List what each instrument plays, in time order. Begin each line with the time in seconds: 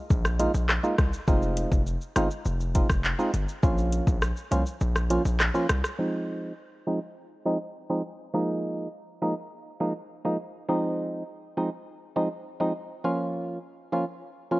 0.10 808-style bass A#1, kick, shaker
0.25 cross-stick, shaker
0.39 synth stab G#3 A#3 D#4 F4, closed hi-hat, shaker
0.54 808-style bass A#1, shaker
0.69 cross-stick, clap, shaker
0.83 synth stab G#3 A#3 D#4 F4, shaker
0.99 808-style bass C2, kick, cross-stick, closed hi-hat, shaker
1.13 shaker
1.28 808-style bass F1, synth stab G#3 C4 D#4 F4, kick, shaker
1.43 shaker
1.57 closed hi-hat, shaker
1.72 808-style bass F1, kick, shaker
1.87 shaker
2.01 shaker
2.16 808-style bass G1, synth stab G#3 C4 D#4 F4, cross-stick, closed hi-hat, shaker
2.31 shaker
2.45 808-style bass F1, shaker
2.60 shaker
2.75 synth stab G#3 C4 D#4 F4, kick, closed hi-hat, shaker
2.89 808-style bass F1, kick, cross-stick, shaker
3.04 clap, shaker
3.19 synth stab G#3 C4 D#4 F4, shaker
3.34 808-style bass G1, closed hi-hat, shaker
3.49 shaker
3.63 808-style bass A#1, synth stab F3 A#3 C#4 F4, kick, shaker
3.78 shaker
3.92 closed hi-hat, shaker
4.07 808-style bass A#1, kick, shaker
4.22 cross-stick, shaker
4.37 shaker
4.51 808-style bass C2, synth stab F3 A#3 C#4 F4, closed hi-hat, shaker
4.66 shaker
4.81 808-style bass A#1, shaker
4.96 cross-stick, shaker
5.10 synth stab F3 A#3 C#4 F4, closed hi-hat, shaker
5.25 808-style bass A#1, shaker
5.40 cross-stick, clap, shaker
5.54 synth stab F3 A#3 C#4 F4, shaker
5.69 808-style bass C2, cross-stick, closed hi-hat, shaker
5.84 cross-stick, shaker
5.98 synth stab F3 G#3 C4 D#4
6.87 synth stab F3 G#3 C4 D#4
7.45 synth stab F3 G#3 C4 D#4
7.90 synth stab F3 G#3 C4 D#4
8.34 synth stab F3 G#3 A#3 D#4
9.22 synth stab F3 G#3 A#3 D#4
9.81 synth stab F3 G#3 A#3 D#4
10.25 synth stab F3 G#3 A#3 D#4
10.69 synth stab F3 G#3 C4 D#4
11.57 synth stab F3 G#3 C4 D#4
12.16 synth stab F3 G#3 C4 D#4
12.60 synth stab F3 G#3 C4 D#4
13.04 synth stab F3 A#3 C#4 F4
13.92 synth stab F3 A#3 C#4 F4
14.51 synth stab F3 A#3 C#4 F4